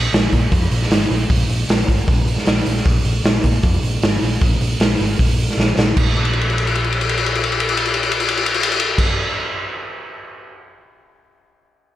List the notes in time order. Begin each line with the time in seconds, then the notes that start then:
0.13 A#1, snare, open hi-hat
0.32 A#2, kick, open hi-hat
0.52 F2, kick, open hi-hat
0.71 A#1, open hi-hat
0.82 snare
0.91 snare, open hi-hat
1.10 A#1, open hi-hat
1.30 A#1, kick, open hi-hat
1.49 A#1, open hi-hat
1.69 A#1, snare, open hi-hat
1.88 G#1, kick, open hi-hat
2.08 A#1, kick, open hi-hat
2.28 open hi-hat
2.38 snare
2.46 A#1, snare, open hi-hat
2.66 A#1, open hi-hat
2.77 snare
2.85 A#1, kick, open hi-hat
3.05 A#1, open hi-hat
3.24 A#1, snare, open hi-hat
3.43 A#2, kick, open hi-hat
3.63 F2, kick, open hi-hat
3.83 A#1, open hi-hat
4.02 G#1, snare, open hi-hat
4.22 A#1, open hi-hat
4.41 A#1, kick, open hi-hat
4.61 A#1, open hi-hat
4.80 A#1, snare, open hi-hat
5.00 G#1, open hi-hat
5.19 A#1, kick, open hi-hat
5.39 open hi-hat
5.50 snare
5.57 A#1, snare
5.77 A#1, snare
5.97 A#1, kick, crash
6.16 crash
6.25 ride
6.33 crash
6.41 ride
6.50 crash
6.58 ride
6.67 crash
6.75 ride
6.84 crash
6.92 ride
7.01 crash
7.09 ride
7.17 crash
7.26 ride
7.35 crash
7.44 ride
7.52 crash
7.60 ride
7.69 crash
7.77 ride
7.85 crash
7.94 ride
8.03 crash
8.12 ride
8.20 crash
8.29 ride
8.37 crash
8.46 ride
8.54 crash
8.63 ride
8.72 crash
8.80 ride
8.98 kick, crash